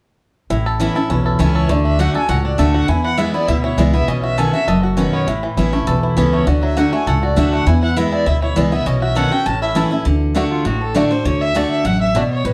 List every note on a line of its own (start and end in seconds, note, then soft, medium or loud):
0.50 0.87 A1 medium
0.50 1.07 A2 medium
0.50 0.79 E4 medium
0.66 0.95 A4 medium
0.80 0.95 E3 medium
0.80 0.95 B3 medium
0.80 0.95 C#4 medium
0.80 1.22 E4 medium
0.80 0.94 E4 medium
0.95 1.10 C#4 soft
0.95 1.09 E4 medium
0.95 1.25 A4 medium
1.10 1.35 B1 medium
1.10 1.67 E2 medium
1.10 1.39 C#4 medium
1.10 1.25 B4 medium
1.25 1.41 E4 soft
1.25 1.54 A4 medium
1.39 1.65 C#2 medium
1.39 1.68 E3 medium
1.39 1.68 B3 medium
1.39 1.68 C#4 loud
1.39 1.70 C#4 medium
1.39 1.68 E4 loud
1.39 1.54 A4 medium
1.55 1.70 A4 medium
1.55 1.71 C#5 medium
1.69 2.06 D2 medium
1.69 1.98 D3 medium
1.69 2.12 A3 medium
1.69 1.85 D5 medium
1.85 2.26 D4 medium
1.85 2.01 E5 medium
1.99 2.14 D3 medium
1.99 2.14 A3 medium
1.99 2.14 D4 medium
1.99 2.28 F#4 medium
1.99 2.13 F#4 medium
1.99 2.15 F#5 medium
2.14 2.29 D4 soft
2.14 2.28 F#4 medium
2.14 2.56 A4 medium
2.14 2.30 G#5 loud
2.29 2.54 C#2 medium
2.29 2.86 A2 medium
2.29 2.71 F#4 medium
2.29 2.44 F#5 medium
2.44 2.86 D4 medium
2.44 2.60 D5 medium
2.58 2.84 D2 medium
2.58 2.87 D3 medium
2.58 2.87 A3 medium
2.58 2.87 D4 loud
2.58 2.87 F#4 loud
2.58 2.89 A4 medium
2.58 2.74 E5 medium
2.74 2.88 F#4 medium
2.74 2.90 F#5 medium
2.88 3.45 E2 medium
2.88 3.26 E2 medium
2.88 3.17 E4 medium
2.88 3.03 G#5 medium
3.04 3.46 E3 medium
3.04 3.20 F#5 medium
3.18 3.33 E3 medium
3.18 3.33 G#3 medium
3.18 3.34 B3 medium
3.18 3.47 E4 medium
3.18 3.33 E4 medium
3.18 3.33 E5 medium
3.34 3.94 B3 medium
3.34 3.48 B3 soft
3.34 3.48 E4 medium
3.34 3.49 D5 loud
3.48 3.74 D2 medium
3.48 4.05 B2 medium
3.48 3.63 E4 medium
3.48 3.63 E5 medium
3.64 3.77 E4 medium
3.64 3.80 C#5 medium
3.77 4.03 C#2 medium
3.77 3.93 E3 medium
3.77 3.93 G#3 medium
3.77 3.93 B3 loud
3.77 4.08 E4 medium
3.77 3.92 E4 medium
3.77 3.93 D5 medium
3.93 4.11 B3 medium
3.93 4.08 B3 medium
3.93 4.07 E4 medium
3.93 4.09 E5 medium
4.08 4.45 B1 medium
4.08 4.36 B2 medium
4.08 4.50 C#4 medium
4.08 4.23 D#5 medium
4.23 4.52 F#4 medium
4.23 4.39 E5 medium
4.38 4.53 B2 medium
4.38 4.53 D#3 medium
4.38 4.53 C#4 medium
4.38 4.52 F#4 loud
4.38 4.66 A4 medium
4.38 4.52 G#5 medium
4.53 4.68 C#4 soft
4.53 4.67 F#4 medium
4.53 4.82 F#4 medium
4.53 4.69 E5 medium
4.67 5.05 F#1 medium
4.67 5.25 F#2 medium
4.67 5.10 A4 medium
4.67 4.82 D#5 medium
4.83 4.99 F#4 soft
4.83 5.25 F#4 medium
4.97 5.26 B2 medium
4.97 5.26 D#3 medium
4.97 5.27 C#4 medium
4.97 5.26 C#4 medium
4.97 5.26 F#4 loud
4.97 5.12 B4 medium
5.13 5.27 B3 medium
5.13 5.26 C#5 medium
5.27 5.46 A1 medium
5.27 5.84 A2 medium
5.27 5.56 E4 medium
5.43 5.84 E3 medium
5.57 5.82 A1 medium
5.57 5.72 E3 medium
5.57 5.73 B3 medium
5.57 5.73 C#4 medium
5.57 6.00 E4 medium
5.57 5.71 E4 loud
5.73 6.14 A3 medium
5.73 5.87 C#4 soft
5.73 5.86 E4 medium
5.87 6.12 B1 medium
5.87 6.44 E2 medium
5.87 6.30 A4 medium
5.87 6.02 B4 medium
6.03 6.44 E4 medium
6.03 6.19 E4 soft
6.17 6.42 C#2 medium
6.17 6.45 E3 medium
6.17 6.46 B3 medium
6.17 6.47 C#4 medium
6.17 6.46 C#4 medium
6.17 6.46 E4 loud
6.17 6.33 A4 medium
6.33 6.47 A3 medium
6.33 6.49 C#5 medium
6.47 6.84 D2 medium
6.47 6.75 D3 medium
6.47 6.76 F#4 medium
6.47 6.62 D5 medium
6.63 7.04 F#3 medium
6.63 6.79 E5 medium
6.77 6.92 D3 medium
6.77 6.92 A3 medium
6.77 6.92 D4 medium
6.77 7.19 F#4 medium
6.77 6.91 F#4 medium
6.77 6.92 F#5 medium
6.92 7.34 A3 medium
6.92 7.07 D4 soft
6.92 7.06 F#4 medium
6.92 7.09 G#5 loud
7.07 7.32 C#2 medium
7.07 7.64 A2 medium
7.07 7.49 A4 medium
7.07 7.23 F#5 medium
7.23 7.64 F#4 medium
7.23 7.39 D5 medium
7.36 7.62 D2 medium
7.36 7.65 D3 medium
7.36 7.65 A3 medium
7.36 7.67 D4 medium
7.36 7.66 D4 medium
7.36 7.66 F#4 loud
7.36 7.52 E5 medium
7.53 7.67 A3 medium
7.53 7.69 F#5 medium
7.67 8.24 E2 medium
7.67 8.04 E2 loud
7.67 7.81 E4 medium
7.67 7.83 G#5 medium
7.83 7.96 E4 medium
7.83 7.98 F#5 medium
7.96 8.25 E3 medium
7.96 8.25 G#3 loud
7.96 8.26 B3 medium
7.96 8.11 E4 medium
7.96 8.26 E4 loud
7.96 8.12 E5 medium
8.13 8.25 E4 medium
8.13 8.28 D5 loud
8.26 8.52 D2 medium
8.26 8.83 B2 medium
8.26 8.41 E4 medium
8.26 8.42 E5 loud
8.42 8.55 E4 medium
8.42 8.58 C#5 medium
8.56 8.82 C#2 medium
8.56 8.71 E3 medium
8.56 8.72 G#3 medium
8.56 8.72 B3 medium
8.56 8.86 E4 medium
8.56 8.71 E4 loud
8.56 8.71 D5 medium
8.72 8.86 B3 medium
8.72 8.86 E4 medium
8.72 8.88 E5 medium
8.86 9.23 B1 medium
8.86 9.14 B2 medium
8.86 9.29 C#4 medium
8.86 9.01 D#5 medium
9.02 9.31 F#4 medium
9.02 9.18 E5 medium
9.15 9.31 B2 medium
9.15 9.31 D#3 medium
9.15 9.31 C#4 medium
9.15 9.30 F#4 medium
9.15 9.46 A4 medium
9.15 9.33 F#5 medium
9.31 9.46 C#4 soft
9.31 9.45 F#4 medium
9.31 9.46 F#4 medium
9.31 9.47 G5 medium
9.46 9.83 A1 medium
9.46 10.03 A2 medium
9.46 9.89 C#4 medium
9.46 9.61 A5 loud
9.62 9.90 E4 medium
9.62 9.70 E5 medium
9.75 9.91 E3 loud
9.75 9.91 A3 medium
9.75 9.91 C#4 medium
9.75 9.89 E4 medium
9.75 10.06 A4 medium
9.91 10.06 C#4 medium
9.91 10.05 E4 medium
9.91 10.06 E4 medium
10.05 10.43 D2 medium
10.05 10.33 D3 medium
10.35 10.64 D3 medium
10.35 10.64 A3 medium
10.35 10.43 A3 medium
10.35 10.64 D4 medium
10.35 10.43 D4 medium
10.35 10.64 F#4 loud
10.35 10.43 F#4 medium
10.51 10.67 F4 medium
10.65 11.03 A1 medium
10.65 11.22 A2 medium
10.65 10.83 F#4 medium
10.81 10.97 A4 medium
10.94 11.10 D3 medium
10.94 11.10 A3 medium
10.94 11.03 A3 medium
10.94 11.11 D4 loud
10.94 11.03 D4 medium
10.94 11.10 F#4 loud
10.94 11.03 F#4 medium
10.94 11.12 D5 medium
11.11 11.25 D4 medium
11.11 11.25 F#4 medium
11.11 11.27 C5 medium
11.25 11.62 D2 loud
11.25 11.53 D3 medium
11.25 11.43 C#5 loud
11.41 11.57 E5 loud
11.55 11.83 D3 medium
11.55 11.84 A3 medium
11.55 11.63 A3 medium
11.55 11.84 D4 loud
11.55 11.63 D4 medium
11.55 11.84 F#4 loud
11.55 11.63 F#4 medium
11.55 11.70 D5 loud
11.71 11.87 E5 medium
11.84 12.22 A1 medium
11.84 12.13 F#2 medium
11.84 12.01 F#5 loud
12.01 12.17 E5 medium
12.15 12.43 B2 loud
12.15 12.22 A3 medium
12.15 12.22 D4 medium
12.15 12.23 F#4 medium
12.15 12.30 D5 medium
12.31 12.47 C#5 medium
12.44 12.53 A1 loud
12.44 12.53 A2 medium
12.44 12.53 B4 medium